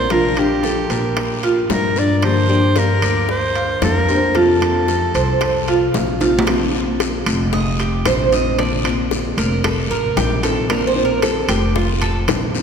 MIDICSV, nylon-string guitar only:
0, 0, Header, 1, 3, 480
1, 0, Start_track
1, 0, Key_signature, -2, "major"
1, 0, Tempo, 529568
1, 96, Time_signature, 4, 2, 24, 8
1, 11441, End_track
2, 0, Start_track
2, 0, Title_t, "Nylon-string guitar"
2, 0, Program_c, 0, 24
2, 0, Note_on_c, 0, 58, 59
2, 92, Note_on_c, 0, 53, 65
2, 93, Note_off_c, 0, 58, 0
2, 98, Note_on_c, 0, 57, 69
2, 103, Note_on_c, 0, 62, 66
2, 106, Note_on_c, 0, 65, 66
2, 322, Note_off_c, 0, 65, 0
2, 325, Note_off_c, 0, 53, 0
2, 328, Note_off_c, 0, 57, 0
2, 331, Note_off_c, 0, 62, 0
2, 333, Note_on_c, 0, 65, 70
2, 341, Note_on_c, 0, 62, 62
2, 349, Note_on_c, 0, 57, 55
2, 566, Note_off_c, 0, 65, 0
2, 570, Note_off_c, 0, 57, 0
2, 570, Note_off_c, 0, 62, 0
2, 577, Note_on_c, 0, 53, 44
2, 581, Note_on_c, 0, 57, 42
2, 587, Note_on_c, 0, 62, 44
2, 590, Note_on_c, 0, 65, 44
2, 1046, Note_off_c, 0, 53, 0
2, 1051, Note_off_c, 0, 57, 0
2, 1054, Note_off_c, 0, 62, 0
2, 1055, Note_off_c, 0, 65, 0
2, 1539, Note_on_c, 0, 53, 43
2, 1543, Note_on_c, 0, 57, 49
2, 1548, Note_on_c, 0, 62, 48
2, 1552, Note_on_c, 0, 65, 58
2, 1770, Note_off_c, 0, 53, 0
2, 1770, Note_off_c, 0, 65, 0
2, 1772, Note_off_c, 0, 57, 0
2, 1775, Note_off_c, 0, 62, 0
2, 1781, Note_on_c, 0, 65, 60
2, 1790, Note_on_c, 0, 62, 61
2, 1796, Note_on_c, 0, 57, 49
2, 2011, Note_off_c, 0, 65, 0
2, 2016, Note_off_c, 0, 62, 0
2, 2018, Note_on_c, 0, 50, 66
2, 2019, Note_off_c, 0, 57, 0
2, 2022, Note_on_c, 0, 53, 70
2, 2026, Note_on_c, 0, 58, 60
2, 2031, Note_on_c, 0, 62, 67
2, 2033, Note_on_c, 0, 67, 74
2, 2248, Note_off_c, 0, 67, 0
2, 2251, Note_off_c, 0, 50, 0
2, 2252, Note_off_c, 0, 53, 0
2, 2253, Note_off_c, 0, 62, 0
2, 2255, Note_off_c, 0, 58, 0
2, 2259, Note_on_c, 0, 67, 63
2, 2264, Note_on_c, 0, 62, 58
2, 2266, Note_on_c, 0, 58, 60
2, 2272, Note_on_c, 0, 53, 58
2, 2487, Note_off_c, 0, 53, 0
2, 2491, Note_off_c, 0, 58, 0
2, 2491, Note_off_c, 0, 67, 0
2, 2494, Note_off_c, 0, 62, 0
2, 2498, Note_on_c, 0, 53, 37
2, 2502, Note_on_c, 0, 58, 42
2, 2509, Note_on_c, 0, 62, 48
2, 2511, Note_on_c, 0, 67, 46
2, 2970, Note_off_c, 0, 53, 0
2, 2971, Note_off_c, 0, 58, 0
2, 2974, Note_off_c, 0, 62, 0
2, 2976, Note_off_c, 0, 67, 0
2, 3461, Note_on_c, 0, 53, 51
2, 3467, Note_on_c, 0, 58, 46
2, 3471, Note_on_c, 0, 62, 53
2, 3476, Note_on_c, 0, 67, 54
2, 3691, Note_off_c, 0, 67, 0
2, 3693, Note_off_c, 0, 53, 0
2, 3696, Note_off_c, 0, 58, 0
2, 3696, Note_off_c, 0, 62, 0
2, 3702, Note_on_c, 0, 67, 64
2, 3707, Note_on_c, 0, 62, 56
2, 3713, Note_on_c, 0, 58, 54
2, 3716, Note_on_c, 0, 53, 57
2, 3933, Note_off_c, 0, 53, 0
2, 3935, Note_off_c, 0, 67, 0
2, 3937, Note_off_c, 0, 62, 0
2, 3940, Note_off_c, 0, 58, 0
2, 3940, Note_on_c, 0, 48, 63
2, 3944, Note_on_c, 0, 53, 64
2, 3948, Note_on_c, 0, 57, 64
2, 3953, Note_on_c, 0, 60, 70
2, 3957, Note_on_c, 0, 65, 73
2, 4171, Note_off_c, 0, 65, 0
2, 4174, Note_off_c, 0, 48, 0
2, 4176, Note_off_c, 0, 53, 0
2, 4178, Note_off_c, 0, 57, 0
2, 4180, Note_off_c, 0, 60, 0
2, 4181, Note_on_c, 0, 65, 69
2, 4189, Note_on_c, 0, 60, 65
2, 4194, Note_on_c, 0, 57, 55
2, 4196, Note_on_c, 0, 53, 52
2, 4413, Note_off_c, 0, 53, 0
2, 4415, Note_off_c, 0, 65, 0
2, 4418, Note_off_c, 0, 57, 0
2, 4419, Note_off_c, 0, 60, 0
2, 4424, Note_on_c, 0, 53, 37
2, 4429, Note_on_c, 0, 57, 48
2, 4434, Note_on_c, 0, 60, 43
2, 4436, Note_on_c, 0, 65, 45
2, 4896, Note_off_c, 0, 53, 0
2, 4899, Note_off_c, 0, 57, 0
2, 4901, Note_off_c, 0, 60, 0
2, 4902, Note_off_c, 0, 65, 0
2, 5387, Note_on_c, 0, 53, 53
2, 5391, Note_on_c, 0, 57, 42
2, 5395, Note_on_c, 0, 60, 51
2, 5399, Note_on_c, 0, 65, 54
2, 5617, Note_off_c, 0, 65, 0
2, 5618, Note_off_c, 0, 53, 0
2, 5620, Note_off_c, 0, 57, 0
2, 5622, Note_off_c, 0, 60, 0
2, 5628, Note_on_c, 0, 65, 63
2, 5632, Note_on_c, 0, 60, 58
2, 5637, Note_on_c, 0, 57, 60
2, 5640, Note_on_c, 0, 53, 51
2, 5858, Note_off_c, 0, 65, 0
2, 5860, Note_off_c, 0, 60, 0
2, 5863, Note_off_c, 0, 57, 0
2, 5864, Note_off_c, 0, 53, 0
2, 5868, Note_on_c, 0, 50, 65
2, 5872, Note_on_c, 0, 58, 69
2, 5875, Note_on_c, 0, 60, 74
2, 5880, Note_on_c, 0, 65, 68
2, 6094, Note_off_c, 0, 65, 0
2, 6098, Note_off_c, 0, 50, 0
2, 6100, Note_off_c, 0, 58, 0
2, 6102, Note_off_c, 0, 60, 0
2, 6105, Note_on_c, 0, 65, 69
2, 6111, Note_on_c, 0, 60, 64
2, 6117, Note_on_c, 0, 58, 55
2, 6336, Note_off_c, 0, 58, 0
2, 6336, Note_off_c, 0, 65, 0
2, 6340, Note_off_c, 0, 60, 0
2, 6342, Note_on_c, 0, 50, 37
2, 6347, Note_on_c, 0, 58, 45
2, 6353, Note_on_c, 0, 60, 49
2, 6356, Note_on_c, 0, 65, 50
2, 6815, Note_off_c, 0, 50, 0
2, 6817, Note_off_c, 0, 58, 0
2, 6820, Note_off_c, 0, 60, 0
2, 6822, Note_off_c, 0, 65, 0
2, 7298, Note_on_c, 0, 51, 51
2, 7305, Note_on_c, 0, 57, 54
2, 7307, Note_on_c, 0, 60, 54
2, 7312, Note_on_c, 0, 65, 58
2, 7530, Note_off_c, 0, 65, 0
2, 7532, Note_off_c, 0, 51, 0
2, 7533, Note_off_c, 0, 60, 0
2, 7536, Note_off_c, 0, 57, 0
2, 7541, Note_on_c, 0, 65, 70
2, 7544, Note_on_c, 0, 60, 67
2, 7550, Note_on_c, 0, 57, 54
2, 7556, Note_on_c, 0, 51, 58
2, 7773, Note_off_c, 0, 65, 0
2, 7774, Note_off_c, 0, 51, 0
2, 7775, Note_off_c, 0, 60, 0
2, 7778, Note_off_c, 0, 57, 0
2, 7778, Note_on_c, 0, 50, 73
2, 7783, Note_on_c, 0, 58, 72
2, 7787, Note_on_c, 0, 60, 68
2, 7791, Note_on_c, 0, 65, 82
2, 8002, Note_off_c, 0, 65, 0
2, 8010, Note_off_c, 0, 60, 0
2, 8011, Note_off_c, 0, 50, 0
2, 8013, Note_on_c, 0, 65, 75
2, 8014, Note_off_c, 0, 58, 0
2, 8021, Note_on_c, 0, 60, 65
2, 8029, Note_on_c, 0, 58, 61
2, 8249, Note_off_c, 0, 65, 0
2, 8250, Note_off_c, 0, 58, 0
2, 8253, Note_off_c, 0, 60, 0
2, 8254, Note_on_c, 0, 50, 46
2, 8261, Note_on_c, 0, 58, 47
2, 8266, Note_on_c, 0, 60, 53
2, 8269, Note_on_c, 0, 65, 47
2, 8728, Note_off_c, 0, 50, 0
2, 8732, Note_off_c, 0, 58, 0
2, 8734, Note_off_c, 0, 60, 0
2, 8734, Note_off_c, 0, 65, 0
2, 9213, Note_on_c, 0, 51, 50
2, 9218, Note_on_c, 0, 57, 54
2, 9223, Note_on_c, 0, 60, 64
2, 9228, Note_on_c, 0, 65, 58
2, 9441, Note_off_c, 0, 65, 0
2, 9447, Note_off_c, 0, 51, 0
2, 9448, Note_off_c, 0, 60, 0
2, 9449, Note_off_c, 0, 57, 0
2, 9452, Note_on_c, 0, 65, 78
2, 9459, Note_on_c, 0, 60, 67
2, 9463, Note_on_c, 0, 57, 65
2, 9469, Note_on_c, 0, 51, 64
2, 9686, Note_off_c, 0, 65, 0
2, 9689, Note_off_c, 0, 60, 0
2, 9691, Note_off_c, 0, 51, 0
2, 9691, Note_off_c, 0, 57, 0
2, 9695, Note_on_c, 0, 50, 72
2, 9700, Note_on_c, 0, 58, 67
2, 9706, Note_on_c, 0, 60, 75
2, 9710, Note_on_c, 0, 65, 79
2, 9918, Note_off_c, 0, 65, 0
2, 9927, Note_off_c, 0, 50, 0
2, 9928, Note_off_c, 0, 60, 0
2, 9929, Note_on_c, 0, 65, 70
2, 9930, Note_off_c, 0, 58, 0
2, 9939, Note_on_c, 0, 60, 77
2, 9942, Note_on_c, 0, 58, 62
2, 10163, Note_off_c, 0, 65, 0
2, 10166, Note_off_c, 0, 58, 0
2, 10169, Note_off_c, 0, 60, 0
2, 10170, Note_on_c, 0, 50, 42
2, 10177, Note_on_c, 0, 58, 45
2, 10182, Note_on_c, 0, 60, 46
2, 10185, Note_on_c, 0, 65, 48
2, 10643, Note_off_c, 0, 50, 0
2, 10646, Note_off_c, 0, 58, 0
2, 10646, Note_off_c, 0, 60, 0
2, 10646, Note_off_c, 0, 65, 0
2, 11125, Note_on_c, 0, 51, 53
2, 11132, Note_on_c, 0, 57, 52
2, 11137, Note_on_c, 0, 60, 55
2, 11139, Note_on_c, 0, 65, 64
2, 11356, Note_off_c, 0, 65, 0
2, 11359, Note_off_c, 0, 51, 0
2, 11363, Note_off_c, 0, 57, 0
2, 11363, Note_off_c, 0, 60, 0
2, 11367, Note_on_c, 0, 65, 64
2, 11374, Note_on_c, 0, 60, 73
2, 11377, Note_on_c, 0, 57, 61
2, 11381, Note_on_c, 0, 51, 60
2, 11441, Note_off_c, 0, 51, 0
2, 11441, Note_off_c, 0, 57, 0
2, 11441, Note_off_c, 0, 60, 0
2, 11441, Note_off_c, 0, 65, 0
2, 11441, End_track
3, 0, Start_track
3, 0, Title_t, "Muted nylon-string guitar strokes"
3, 1057, Note_on_c, 9, 29, 50
3, 1148, Note_off_c, 9, 29, 0
3, 2979, Note_on_c, 9, 29, 51
3, 3070, Note_off_c, 9, 29, 0
3, 4908, Note_on_c, 9, 29, 51
3, 4998, Note_off_c, 9, 29, 0
3, 6823, Note_on_c, 9, 29, 55
3, 6914, Note_off_c, 9, 29, 0
3, 8738, Note_on_c, 9, 29, 52
3, 8828, Note_off_c, 9, 29, 0
3, 10649, Note_on_c, 9, 29, 56
3, 10740, Note_off_c, 9, 29, 0
3, 11441, End_track
0, 0, End_of_file